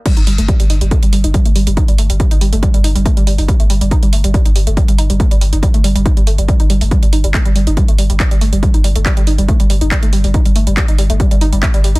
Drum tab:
CC |x---------------|----------------|----------------|----------------|
HH |xxoxxxoxxxoxxxox|xxoxxxoxxxoxxxoo|xxoxxxoxxxoxxxox|xxoxxxoxxxoxxxoo|
CP |----------------|----------------|----------------|----------------|
BD |o---o---o---o---|o---o---o---o---|o---o---o---o---|o---o---o---o---|

CC |----------------|----------------|----------------|
HH |xxoxxxoxxxoxxxox|xxoxxxoxxxoxxxoo|xxoxxxoxxxoxxxox|
CP |----x-------x---|----x-------x---|----x-------x---|
BD |o---o---o---o---|o---o---o---o---|o---o---o---o---|